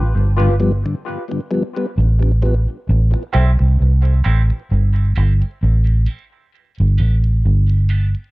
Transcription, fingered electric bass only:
Already playing: A1
0.15 G1
1.98 A1
2.89 A1
3.35 B1
3.60 C2
3.81 C2
4.26 A1
4.71 G1
5.17 G1
5.63 A1
6.80 G1
7.00 A1
7.45 G1

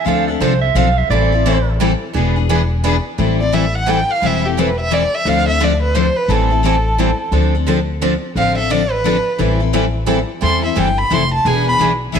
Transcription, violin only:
3.40 D5
3.54 E5
3.75 F#5
3.90 G5
4.11 F5
4.26 E5
4.46 G4
4.60 B4
4.80 E5
4.94 D5
5.15 E5
5.29 F5
5.49 E5
5.64 D5
5.82 B4
5.95 C5
6.16 B4
6.30 A4
8.38 F5
8.58 E5
8.71 D5
8.92 B4
10.43 C6
10.65 E5
10.79 G5
10.98 B5
11.14 C6
11.34 A5
11.47 G#5
11.69 B5
12.14 E5

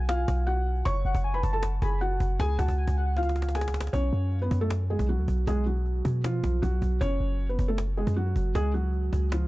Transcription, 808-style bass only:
Already playing: B1
0.28 B1
0.86 F#1
1.05 F#1
1.15 F#1
1.34 F1
1.43 F#1
1.82 F#1
2.20 F#1
2.40 C#2
2.59 C#2
2.88 C#2
3.93 B1
4.13 F#2
4.51 F#2
4.99 B1
5.18 D2
5.28 B1
5.47 B1
6.05 B2
6.44 B1
6.63 B1
6.82 B1
7.01 F#1
7.20 F#1
7.59 F#1
8.07 F#2
8.36 F#1
8.55 C#2
9.13 C#2

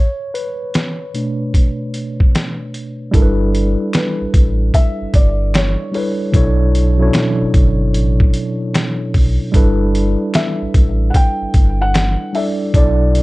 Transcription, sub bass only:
3.14 G1
4.21 A1
4.35 A1
5.01 G1
5.14 G1
6.34 B1
7.41 G1
7.55 G1
7.95 A1
9.15 B1
9.55 G1
10.62 A1
10.75 A1
11.42 G1
11.55 G1
12.75 B1

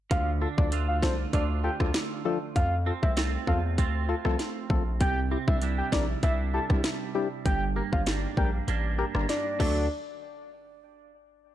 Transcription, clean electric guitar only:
0.11 D3
0.41 D4
0.72 A3 D4 F4
1.33 A3 D4 F4
2.86 C4
3.17 A3 C4 F4
3.78 A3 C4 F4
5.01 C3
5.31 C4
5.48 D4
5.62 G3 D4 E4
6.23 G3 D4 E4
7.46 G2
7.76 A#3
8.07 G3 A#3 D4
8.68 G3 A#3 D4
9.59 D3 F#3 A3 D4

